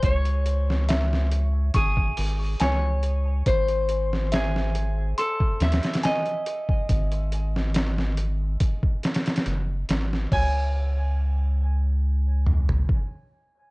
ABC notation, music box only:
X:1
M:4/4
L:1/8
Q:1/4=70
K:C#m
V:1 name="Music box"
c z e z c'2 g2 | ^B z e z ^b2 g2 | z8 | c z6 z |]